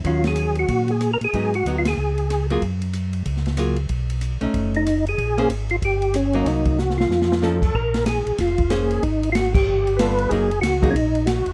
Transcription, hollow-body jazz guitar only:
X:1
M:4/4
L:1/8
Q:"Swing" 1/4=187
K:Bbm
V:1 name="Hollow-body jazz guitar"
[E,G,D]4- [E,G,D] z3 | [G,_CE] z [G,CE] z4 [G,B,FA] | z6 [G,B,FA] z | z3 [=A,^C^D]3 z2 |
z [B,DAc] z4 z [G,B,E]- | [G,B,E]2 z4 [F,^CE=A] z | z6 [B,DAc]2 | z6 [=G,=B,F=A]2 |
[G,B,EA] z2 [G,B,EA] z4 |]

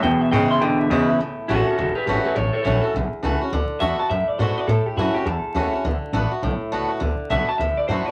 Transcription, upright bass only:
X:1
M:4/4
L:1/8
Q:"Swing" 1/4=206
K:A
V:1 name="Upright bass" clef=bass
E,, z G,, z F,, z E,, z | C,, z A,,, z E,,, z G,,, z | A,,, z _B,,, z =B,,, z C,, z | D,, z E,, z F,, z G,, z |
A,, z F,, z E,, z ^D,, z | D,, z A,,, z B,,, z C,, z | D,, z B,,, z D,, z F,, z |]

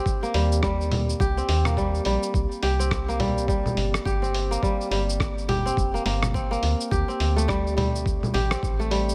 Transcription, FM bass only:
X:1
M:4/4
L:1/8
Q:"Swing 16ths" 1/4=105
K:Gm
V:1 name="FM bass" clef=bass
z E,,3 C,, E,,2 B,,, | C,, C,,4 G,,, G,,,2 | z G,,,3 F,,, G,,,2 D,, | D,, D,,4 A,,, A,,,2 |]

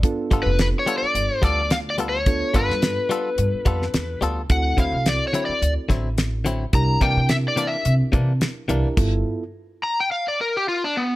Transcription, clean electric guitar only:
X:1
M:4/4
L:1/8
Q:"Swing 16ths" 1/4=107
K:Gmix
V:1 name="Clean electric guitar"
z [G,B,FA] z [G,B,FA] z [G,B,FA] z [G,B,FA] | z [G,B,FA] z [G,B,FA] z [G,B,FA] z [G,B,FA] | z [D,^F,CE] z [D,F,CE] z [D,F,CE] z [D,F,CE] | z [C,E,_B,D] z [C,E,B,D] z [C,E,B,D] z [C,E,B,D] |
z8 |]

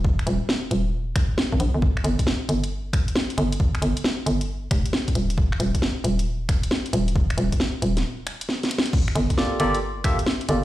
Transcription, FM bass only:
X:1
M:4/4
L:1/16
Q:"Swing 16ths" 1/4=135
K:Gm
V:1 name="FM bass" clef=bass
E,,,2 E,,, z3 E,,,4 z3 _A,,, B,,, G,,,- | G,,,2 G,,, z3 G,,,6 z2 G,,,2- | G,,,2 G,,, z3 G,,,4 F,,, z3 E,,,2- | E,,,2 E,,, z3 E,,,6 z2 E,,,2- |
E,,,2 E,,, z3 E,,,2 z8 | z2 G,,, z3 G,,,6 z2 G,,,2 |]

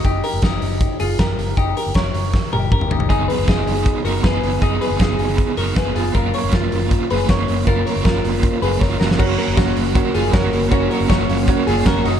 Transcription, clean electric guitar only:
X:1
M:4/4
L:1/8
Q:1/4=157
K:F#
V:1 name="Clean electric guitar"
[D=G] [GA] [DG]3 [E^G] [=GA]2 | [D=G] [GA] [Ac]3 [GA] [GA] [DG] | [DG] [GB] [DG]3 [FA] [GB]2 | [DG] [GB] [DG]3 [FA] [GB] [EG] |
[EA] [Ac] [EA]3 [GB] [Ac]2 | [EA] [Ac] [EA]3 [GB] [Ac] [FA] | [CF] [FA] [CF]3 [EG] [FA]2 | [CF] [FA] [CF]3 [EG] [FA] [DF] |]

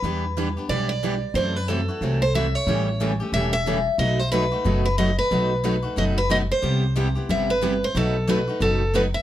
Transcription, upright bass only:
X:1
M:4/4
L:1/8
Q:"Swing" 1/4=182
K:Em
V:1 name="Upright bass" clef=bass
E,,4 B,,,4 | F,,4 C,,4 | A,,,4 E,,,4 | B,,,4 F,,,4 |
B,,,4 F,,,4 | C,,4 G,,,4 | B,,,4 F,,,4 |]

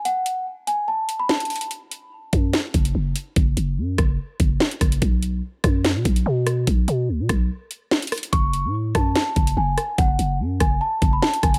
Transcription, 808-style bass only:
X:1
M:4/4
L:1/16
Q:1/4=145
K:F#m
V:1 name="808-style bass" clef=bass
z16 | z6 F,,2 z2 F,,,2 F,,,2 z2 | F,,,2 F,,,2 F,,2 F,,,2 z2 F,,,2 z2 F,,,2 | B,,,4 z2 F,,3 B,, B,,,2 B,,4 |
B,,,2 B,,2 D,, B,, B,,,2 z8 | F,,,3 A,,3 F,,2 z2 F,,,2 F,,,2 z2 | F,,,2 F,,,2 F,,2 F,,,2 z2 F,,,2 z2 F,,,2 |]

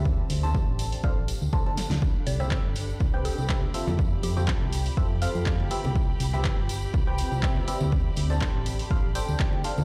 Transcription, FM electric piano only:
X:1
M:4/4
L:1/16
Q:"Swing 16ths" 1/4=122
K:C
V:1 name="FM electric piano"
z3 [DAca]4- [DAca] [DAcf] z3 [DAca] [DAca] z2 | z3 [CGBe]2 z4 [CGBg]3 [CGBe]2 [CFAe]2 | z3 [CFAg]4- [CFAg] [CFAe] z [CFAf]4 [CGBe] z | z3 [CGBe]2 z4 [CGBg]3 [CGBe]2 [CGBe]2 |
z3 [DAca]4- [DAca] [DAcf] z [DAcg]4 [DAcf] z |]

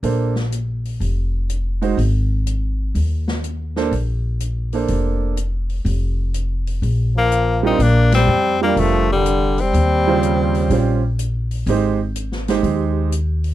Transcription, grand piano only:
X:1
M:4/4
L:1/8
Q:"Swing" 1/4=124
K:Bb
V:1 name="Grand piano"
[B,DAc] z6 [_A,E_Gc] | z6 z [B,DAc] | z3 [B,DAc]3 z2 | z6 z [G,DFB] |
z3 [G,DFB]3 z2 | z [_D,G,Fc]3 [G,_DFc] z3 | [_A,EGc] z2 [A,EGc]3 z2 |]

